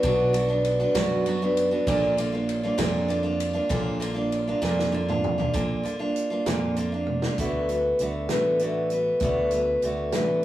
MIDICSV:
0, 0, Header, 1, 4, 480
1, 0, Start_track
1, 0, Tempo, 612245
1, 29, Time_signature, 6, 3, 24, 8
1, 8191, End_track
2, 0, Start_track
2, 0, Title_t, "Steel-string acoustic guitar"
2, 0, Program_c, 0, 25
2, 22, Note_on_c, 0, 47, 91
2, 25, Note_on_c, 0, 54, 94
2, 27, Note_on_c, 0, 62, 109
2, 29, Note_on_c, 0, 59, 91
2, 38, Note_on_c, 0, 66, 101
2, 250, Note_off_c, 0, 54, 0
2, 256, Note_off_c, 0, 59, 0
2, 260, Note_on_c, 0, 54, 71
2, 264, Note_off_c, 0, 62, 0
2, 265, Note_off_c, 0, 47, 0
2, 265, Note_on_c, 0, 59, 67
2, 273, Note_off_c, 0, 66, 0
2, 274, Note_on_c, 0, 62, 78
2, 281, Note_on_c, 0, 66, 75
2, 370, Note_off_c, 0, 66, 0
2, 379, Note_off_c, 0, 62, 0
2, 379, Note_on_c, 0, 66, 65
2, 384, Note_off_c, 0, 54, 0
2, 387, Note_off_c, 0, 59, 0
2, 389, Note_on_c, 0, 62, 60
2, 397, Note_on_c, 0, 59, 54
2, 616, Note_off_c, 0, 66, 0
2, 624, Note_off_c, 0, 62, 0
2, 625, Note_on_c, 0, 66, 74
2, 632, Note_off_c, 0, 59, 0
2, 633, Note_on_c, 0, 62, 67
2, 640, Note_on_c, 0, 59, 58
2, 739, Note_off_c, 0, 59, 0
2, 742, Note_on_c, 0, 47, 85
2, 743, Note_off_c, 0, 62, 0
2, 746, Note_off_c, 0, 66, 0
2, 747, Note_on_c, 0, 54, 96
2, 749, Note_on_c, 0, 59, 89
2, 753, Note_on_c, 0, 62, 97
2, 755, Note_on_c, 0, 66, 101
2, 982, Note_off_c, 0, 54, 0
2, 984, Note_off_c, 0, 47, 0
2, 984, Note_off_c, 0, 59, 0
2, 990, Note_off_c, 0, 62, 0
2, 991, Note_off_c, 0, 66, 0
2, 991, Note_on_c, 0, 54, 70
2, 994, Note_on_c, 0, 59, 72
2, 1000, Note_on_c, 0, 62, 72
2, 1009, Note_on_c, 0, 66, 89
2, 1104, Note_off_c, 0, 66, 0
2, 1109, Note_off_c, 0, 54, 0
2, 1110, Note_off_c, 0, 59, 0
2, 1110, Note_off_c, 0, 62, 0
2, 1114, Note_on_c, 0, 66, 72
2, 1119, Note_on_c, 0, 62, 65
2, 1127, Note_on_c, 0, 59, 58
2, 1333, Note_off_c, 0, 66, 0
2, 1339, Note_off_c, 0, 62, 0
2, 1342, Note_on_c, 0, 66, 70
2, 1348, Note_off_c, 0, 59, 0
2, 1348, Note_on_c, 0, 62, 66
2, 1357, Note_on_c, 0, 59, 50
2, 1464, Note_off_c, 0, 66, 0
2, 1466, Note_on_c, 0, 50, 107
2, 1467, Note_off_c, 0, 62, 0
2, 1467, Note_on_c, 0, 46, 102
2, 1471, Note_off_c, 0, 59, 0
2, 1474, Note_on_c, 0, 58, 98
2, 1477, Note_on_c, 0, 62, 107
2, 1478, Note_on_c, 0, 65, 117
2, 1695, Note_off_c, 0, 50, 0
2, 1705, Note_on_c, 0, 50, 73
2, 1707, Note_off_c, 0, 46, 0
2, 1707, Note_off_c, 0, 58, 0
2, 1712, Note_off_c, 0, 62, 0
2, 1712, Note_off_c, 0, 65, 0
2, 1717, Note_on_c, 0, 58, 63
2, 1723, Note_on_c, 0, 62, 71
2, 1724, Note_on_c, 0, 65, 78
2, 1812, Note_off_c, 0, 65, 0
2, 1821, Note_on_c, 0, 65, 69
2, 1825, Note_off_c, 0, 50, 0
2, 1830, Note_off_c, 0, 62, 0
2, 1831, Note_off_c, 0, 58, 0
2, 1839, Note_on_c, 0, 62, 60
2, 1841, Note_on_c, 0, 58, 57
2, 2056, Note_off_c, 0, 65, 0
2, 2063, Note_off_c, 0, 62, 0
2, 2065, Note_on_c, 0, 65, 73
2, 2068, Note_off_c, 0, 58, 0
2, 2073, Note_on_c, 0, 62, 68
2, 2078, Note_on_c, 0, 58, 65
2, 2173, Note_off_c, 0, 58, 0
2, 2177, Note_on_c, 0, 46, 97
2, 2178, Note_off_c, 0, 62, 0
2, 2179, Note_off_c, 0, 65, 0
2, 2179, Note_on_c, 0, 50, 98
2, 2182, Note_on_c, 0, 58, 96
2, 2188, Note_on_c, 0, 62, 116
2, 2188, Note_on_c, 0, 65, 97
2, 2408, Note_off_c, 0, 50, 0
2, 2414, Note_off_c, 0, 58, 0
2, 2417, Note_on_c, 0, 50, 66
2, 2421, Note_off_c, 0, 46, 0
2, 2424, Note_off_c, 0, 62, 0
2, 2424, Note_on_c, 0, 58, 70
2, 2427, Note_off_c, 0, 65, 0
2, 2433, Note_on_c, 0, 62, 77
2, 2439, Note_on_c, 0, 65, 79
2, 2522, Note_off_c, 0, 65, 0
2, 2529, Note_off_c, 0, 62, 0
2, 2532, Note_on_c, 0, 65, 67
2, 2539, Note_on_c, 0, 62, 65
2, 2541, Note_off_c, 0, 50, 0
2, 2544, Note_off_c, 0, 58, 0
2, 2553, Note_on_c, 0, 58, 53
2, 2762, Note_off_c, 0, 65, 0
2, 2769, Note_off_c, 0, 62, 0
2, 2771, Note_on_c, 0, 65, 63
2, 2777, Note_off_c, 0, 58, 0
2, 2778, Note_on_c, 0, 62, 61
2, 2787, Note_on_c, 0, 58, 55
2, 2888, Note_off_c, 0, 58, 0
2, 2893, Note_off_c, 0, 62, 0
2, 2895, Note_on_c, 0, 46, 88
2, 2898, Note_off_c, 0, 65, 0
2, 2898, Note_on_c, 0, 58, 98
2, 2902, Note_on_c, 0, 50, 94
2, 2902, Note_on_c, 0, 62, 100
2, 2907, Note_on_c, 0, 65, 103
2, 3126, Note_off_c, 0, 50, 0
2, 3132, Note_off_c, 0, 58, 0
2, 3135, Note_off_c, 0, 62, 0
2, 3135, Note_on_c, 0, 50, 70
2, 3140, Note_off_c, 0, 46, 0
2, 3141, Note_on_c, 0, 58, 72
2, 3144, Note_on_c, 0, 62, 72
2, 3146, Note_off_c, 0, 65, 0
2, 3156, Note_on_c, 0, 65, 71
2, 3237, Note_off_c, 0, 65, 0
2, 3246, Note_on_c, 0, 65, 61
2, 3248, Note_off_c, 0, 62, 0
2, 3256, Note_off_c, 0, 58, 0
2, 3258, Note_on_c, 0, 62, 59
2, 3260, Note_off_c, 0, 50, 0
2, 3265, Note_on_c, 0, 58, 56
2, 3495, Note_off_c, 0, 65, 0
2, 3501, Note_off_c, 0, 62, 0
2, 3505, Note_off_c, 0, 58, 0
2, 3508, Note_on_c, 0, 65, 70
2, 3518, Note_on_c, 0, 58, 64
2, 3518, Note_on_c, 0, 62, 69
2, 3617, Note_off_c, 0, 58, 0
2, 3618, Note_off_c, 0, 65, 0
2, 3619, Note_on_c, 0, 46, 102
2, 3622, Note_off_c, 0, 62, 0
2, 3622, Note_on_c, 0, 50, 97
2, 3626, Note_on_c, 0, 58, 94
2, 3627, Note_on_c, 0, 65, 97
2, 3632, Note_on_c, 0, 62, 95
2, 3848, Note_off_c, 0, 50, 0
2, 3856, Note_off_c, 0, 58, 0
2, 3858, Note_on_c, 0, 50, 79
2, 3862, Note_off_c, 0, 46, 0
2, 3865, Note_on_c, 0, 58, 68
2, 3866, Note_off_c, 0, 62, 0
2, 3866, Note_off_c, 0, 65, 0
2, 3875, Note_on_c, 0, 62, 78
2, 3875, Note_on_c, 0, 65, 74
2, 3977, Note_off_c, 0, 65, 0
2, 3982, Note_off_c, 0, 50, 0
2, 3985, Note_off_c, 0, 58, 0
2, 3986, Note_on_c, 0, 65, 71
2, 3988, Note_off_c, 0, 62, 0
2, 3997, Note_on_c, 0, 62, 57
2, 4004, Note_on_c, 0, 58, 55
2, 4207, Note_off_c, 0, 65, 0
2, 4217, Note_on_c, 0, 65, 61
2, 4223, Note_off_c, 0, 62, 0
2, 4229, Note_off_c, 0, 58, 0
2, 4233, Note_on_c, 0, 62, 55
2, 4238, Note_on_c, 0, 58, 48
2, 4330, Note_off_c, 0, 58, 0
2, 4337, Note_off_c, 0, 62, 0
2, 4337, Note_off_c, 0, 65, 0
2, 4339, Note_on_c, 0, 50, 83
2, 4339, Note_on_c, 0, 58, 88
2, 4341, Note_on_c, 0, 46, 85
2, 4346, Note_on_c, 0, 65, 89
2, 4347, Note_on_c, 0, 62, 97
2, 4564, Note_off_c, 0, 50, 0
2, 4574, Note_off_c, 0, 58, 0
2, 4574, Note_on_c, 0, 50, 66
2, 4579, Note_off_c, 0, 62, 0
2, 4579, Note_off_c, 0, 65, 0
2, 4583, Note_off_c, 0, 46, 0
2, 4584, Note_on_c, 0, 58, 68
2, 4588, Note_on_c, 0, 65, 70
2, 4589, Note_on_c, 0, 62, 70
2, 4689, Note_off_c, 0, 65, 0
2, 4695, Note_off_c, 0, 62, 0
2, 4699, Note_on_c, 0, 65, 65
2, 4700, Note_off_c, 0, 50, 0
2, 4705, Note_off_c, 0, 58, 0
2, 4705, Note_on_c, 0, 62, 61
2, 4718, Note_on_c, 0, 58, 52
2, 4930, Note_off_c, 0, 65, 0
2, 4939, Note_on_c, 0, 65, 70
2, 4944, Note_off_c, 0, 62, 0
2, 4952, Note_off_c, 0, 58, 0
2, 4953, Note_on_c, 0, 62, 64
2, 4961, Note_on_c, 0, 58, 58
2, 5059, Note_off_c, 0, 62, 0
2, 5062, Note_off_c, 0, 58, 0
2, 5063, Note_off_c, 0, 65, 0
2, 5066, Note_on_c, 0, 46, 92
2, 5068, Note_on_c, 0, 62, 92
2, 5069, Note_on_c, 0, 50, 98
2, 5071, Note_on_c, 0, 58, 103
2, 5077, Note_on_c, 0, 65, 95
2, 5293, Note_off_c, 0, 50, 0
2, 5295, Note_off_c, 0, 58, 0
2, 5302, Note_off_c, 0, 62, 0
2, 5302, Note_on_c, 0, 50, 71
2, 5304, Note_on_c, 0, 58, 69
2, 5306, Note_off_c, 0, 46, 0
2, 5308, Note_off_c, 0, 65, 0
2, 5312, Note_on_c, 0, 62, 80
2, 5317, Note_on_c, 0, 65, 79
2, 5415, Note_off_c, 0, 65, 0
2, 5424, Note_off_c, 0, 50, 0
2, 5425, Note_off_c, 0, 58, 0
2, 5425, Note_on_c, 0, 65, 59
2, 5429, Note_off_c, 0, 62, 0
2, 5439, Note_on_c, 0, 62, 54
2, 5442, Note_on_c, 0, 58, 46
2, 5666, Note_off_c, 0, 65, 0
2, 5673, Note_off_c, 0, 62, 0
2, 5675, Note_off_c, 0, 58, 0
2, 5678, Note_on_c, 0, 65, 61
2, 5688, Note_on_c, 0, 62, 53
2, 5694, Note_on_c, 0, 58, 44
2, 5786, Note_on_c, 0, 50, 85
2, 5788, Note_off_c, 0, 58, 0
2, 5791, Note_on_c, 0, 57, 82
2, 5793, Note_off_c, 0, 65, 0
2, 5794, Note_off_c, 0, 62, 0
2, 5797, Note_on_c, 0, 59, 91
2, 5799, Note_on_c, 0, 66, 96
2, 6023, Note_off_c, 0, 66, 0
2, 6027, Note_off_c, 0, 50, 0
2, 6030, Note_off_c, 0, 57, 0
2, 6030, Note_off_c, 0, 59, 0
2, 6032, Note_on_c, 0, 66, 57
2, 6039, Note_on_c, 0, 59, 52
2, 6053, Note_on_c, 0, 57, 46
2, 6271, Note_off_c, 0, 57, 0
2, 6271, Note_off_c, 0, 66, 0
2, 6274, Note_off_c, 0, 59, 0
2, 6279, Note_on_c, 0, 50, 62
2, 6280, Note_on_c, 0, 57, 66
2, 6287, Note_on_c, 0, 59, 64
2, 6291, Note_on_c, 0, 66, 68
2, 6498, Note_off_c, 0, 66, 0
2, 6503, Note_off_c, 0, 59, 0
2, 6507, Note_on_c, 0, 66, 78
2, 6510, Note_off_c, 0, 57, 0
2, 6511, Note_off_c, 0, 50, 0
2, 6512, Note_on_c, 0, 59, 75
2, 6520, Note_on_c, 0, 50, 63
2, 6520, Note_on_c, 0, 57, 66
2, 6739, Note_off_c, 0, 50, 0
2, 6746, Note_off_c, 0, 57, 0
2, 6748, Note_on_c, 0, 50, 65
2, 6749, Note_off_c, 0, 66, 0
2, 6751, Note_off_c, 0, 59, 0
2, 6755, Note_on_c, 0, 57, 66
2, 6762, Note_on_c, 0, 59, 70
2, 6767, Note_on_c, 0, 66, 65
2, 6980, Note_off_c, 0, 66, 0
2, 6985, Note_off_c, 0, 59, 0
2, 6989, Note_off_c, 0, 50, 0
2, 6989, Note_on_c, 0, 66, 59
2, 6993, Note_off_c, 0, 57, 0
2, 6994, Note_on_c, 0, 59, 49
2, 7005, Note_on_c, 0, 57, 47
2, 7224, Note_off_c, 0, 57, 0
2, 7229, Note_off_c, 0, 59, 0
2, 7230, Note_off_c, 0, 66, 0
2, 7232, Note_on_c, 0, 50, 85
2, 7233, Note_on_c, 0, 57, 92
2, 7238, Note_on_c, 0, 59, 89
2, 7242, Note_on_c, 0, 66, 96
2, 7462, Note_off_c, 0, 66, 0
2, 7469, Note_off_c, 0, 59, 0
2, 7471, Note_on_c, 0, 66, 60
2, 7472, Note_off_c, 0, 50, 0
2, 7472, Note_off_c, 0, 57, 0
2, 7479, Note_on_c, 0, 59, 46
2, 7486, Note_on_c, 0, 57, 44
2, 7705, Note_on_c, 0, 50, 61
2, 7706, Note_off_c, 0, 57, 0
2, 7709, Note_off_c, 0, 59, 0
2, 7712, Note_off_c, 0, 66, 0
2, 7716, Note_on_c, 0, 57, 64
2, 7718, Note_on_c, 0, 59, 64
2, 7723, Note_on_c, 0, 66, 71
2, 7946, Note_off_c, 0, 66, 0
2, 7947, Note_off_c, 0, 57, 0
2, 7947, Note_off_c, 0, 59, 0
2, 7949, Note_off_c, 0, 50, 0
2, 7955, Note_on_c, 0, 66, 72
2, 7956, Note_on_c, 0, 59, 81
2, 7957, Note_on_c, 0, 57, 72
2, 7964, Note_on_c, 0, 50, 59
2, 8176, Note_off_c, 0, 50, 0
2, 8187, Note_off_c, 0, 57, 0
2, 8191, Note_off_c, 0, 59, 0
2, 8191, Note_off_c, 0, 66, 0
2, 8191, End_track
3, 0, Start_track
3, 0, Title_t, "Fingered electric bass"
3, 0, Program_c, 1, 33
3, 23, Note_on_c, 1, 35, 94
3, 646, Note_off_c, 1, 35, 0
3, 740, Note_on_c, 1, 42, 105
3, 1364, Note_off_c, 1, 42, 0
3, 1465, Note_on_c, 1, 34, 93
3, 2086, Note_off_c, 1, 34, 0
3, 2179, Note_on_c, 1, 41, 111
3, 2803, Note_off_c, 1, 41, 0
3, 2902, Note_on_c, 1, 34, 99
3, 3525, Note_off_c, 1, 34, 0
3, 3623, Note_on_c, 1, 41, 112
3, 4246, Note_off_c, 1, 41, 0
3, 4344, Note_on_c, 1, 34, 93
3, 4552, Note_off_c, 1, 34, 0
3, 5068, Note_on_c, 1, 41, 100
3, 5690, Note_off_c, 1, 41, 0
3, 5782, Note_on_c, 1, 38, 89
3, 6200, Note_off_c, 1, 38, 0
3, 6271, Note_on_c, 1, 38, 86
3, 6477, Note_off_c, 1, 38, 0
3, 6512, Note_on_c, 1, 33, 99
3, 7134, Note_off_c, 1, 33, 0
3, 7219, Note_on_c, 1, 38, 92
3, 7639, Note_off_c, 1, 38, 0
3, 7713, Note_on_c, 1, 38, 79
3, 7920, Note_off_c, 1, 38, 0
3, 7958, Note_on_c, 1, 33, 113
3, 8191, Note_off_c, 1, 33, 0
3, 8191, End_track
4, 0, Start_track
4, 0, Title_t, "Drums"
4, 24, Note_on_c, 9, 51, 94
4, 26, Note_on_c, 9, 36, 109
4, 102, Note_off_c, 9, 51, 0
4, 105, Note_off_c, 9, 36, 0
4, 267, Note_on_c, 9, 51, 80
4, 346, Note_off_c, 9, 51, 0
4, 506, Note_on_c, 9, 51, 82
4, 584, Note_off_c, 9, 51, 0
4, 744, Note_on_c, 9, 36, 76
4, 745, Note_on_c, 9, 51, 108
4, 747, Note_on_c, 9, 38, 107
4, 822, Note_off_c, 9, 36, 0
4, 823, Note_off_c, 9, 51, 0
4, 825, Note_off_c, 9, 38, 0
4, 986, Note_on_c, 9, 51, 75
4, 1065, Note_off_c, 9, 51, 0
4, 1231, Note_on_c, 9, 51, 79
4, 1309, Note_off_c, 9, 51, 0
4, 1466, Note_on_c, 9, 36, 108
4, 1474, Note_on_c, 9, 51, 112
4, 1544, Note_off_c, 9, 36, 0
4, 1552, Note_off_c, 9, 51, 0
4, 1711, Note_on_c, 9, 51, 80
4, 1789, Note_off_c, 9, 51, 0
4, 1950, Note_on_c, 9, 51, 84
4, 2028, Note_off_c, 9, 51, 0
4, 2182, Note_on_c, 9, 36, 71
4, 2183, Note_on_c, 9, 51, 107
4, 2185, Note_on_c, 9, 38, 116
4, 2260, Note_off_c, 9, 36, 0
4, 2261, Note_off_c, 9, 51, 0
4, 2263, Note_off_c, 9, 38, 0
4, 2431, Note_on_c, 9, 51, 72
4, 2509, Note_off_c, 9, 51, 0
4, 2667, Note_on_c, 9, 51, 82
4, 2745, Note_off_c, 9, 51, 0
4, 2902, Note_on_c, 9, 36, 106
4, 2903, Note_on_c, 9, 51, 105
4, 2980, Note_off_c, 9, 36, 0
4, 2982, Note_off_c, 9, 51, 0
4, 3152, Note_on_c, 9, 51, 76
4, 3231, Note_off_c, 9, 51, 0
4, 3388, Note_on_c, 9, 51, 78
4, 3466, Note_off_c, 9, 51, 0
4, 3634, Note_on_c, 9, 38, 60
4, 3712, Note_off_c, 9, 38, 0
4, 3757, Note_on_c, 9, 38, 70
4, 3835, Note_off_c, 9, 38, 0
4, 3993, Note_on_c, 9, 47, 88
4, 4072, Note_off_c, 9, 47, 0
4, 4109, Note_on_c, 9, 45, 98
4, 4188, Note_off_c, 9, 45, 0
4, 4231, Note_on_c, 9, 43, 97
4, 4309, Note_off_c, 9, 43, 0
4, 4345, Note_on_c, 9, 42, 93
4, 4346, Note_on_c, 9, 36, 115
4, 4423, Note_off_c, 9, 42, 0
4, 4424, Note_off_c, 9, 36, 0
4, 4590, Note_on_c, 9, 42, 70
4, 4668, Note_off_c, 9, 42, 0
4, 4828, Note_on_c, 9, 42, 75
4, 4906, Note_off_c, 9, 42, 0
4, 5066, Note_on_c, 9, 42, 91
4, 5067, Note_on_c, 9, 38, 106
4, 5144, Note_off_c, 9, 42, 0
4, 5146, Note_off_c, 9, 38, 0
4, 5303, Note_on_c, 9, 42, 66
4, 5382, Note_off_c, 9, 42, 0
4, 5539, Note_on_c, 9, 48, 58
4, 5618, Note_off_c, 9, 48, 0
4, 5663, Note_on_c, 9, 38, 95
4, 5741, Note_off_c, 9, 38, 0
4, 5786, Note_on_c, 9, 42, 86
4, 5787, Note_on_c, 9, 36, 98
4, 5864, Note_off_c, 9, 42, 0
4, 5865, Note_off_c, 9, 36, 0
4, 6027, Note_on_c, 9, 42, 64
4, 6105, Note_off_c, 9, 42, 0
4, 6263, Note_on_c, 9, 42, 64
4, 6341, Note_off_c, 9, 42, 0
4, 6498, Note_on_c, 9, 42, 83
4, 6499, Note_on_c, 9, 38, 112
4, 6576, Note_off_c, 9, 42, 0
4, 6578, Note_off_c, 9, 38, 0
4, 6738, Note_on_c, 9, 42, 63
4, 6816, Note_off_c, 9, 42, 0
4, 6977, Note_on_c, 9, 42, 63
4, 7055, Note_off_c, 9, 42, 0
4, 7211, Note_on_c, 9, 42, 79
4, 7220, Note_on_c, 9, 36, 114
4, 7290, Note_off_c, 9, 42, 0
4, 7299, Note_off_c, 9, 36, 0
4, 7453, Note_on_c, 9, 42, 70
4, 7531, Note_off_c, 9, 42, 0
4, 7700, Note_on_c, 9, 42, 72
4, 7778, Note_off_c, 9, 42, 0
4, 7936, Note_on_c, 9, 42, 91
4, 7938, Note_on_c, 9, 38, 100
4, 8015, Note_off_c, 9, 42, 0
4, 8016, Note_off_c, 9, 38, 0
4, 8191, End_track
0, 0, End_of_file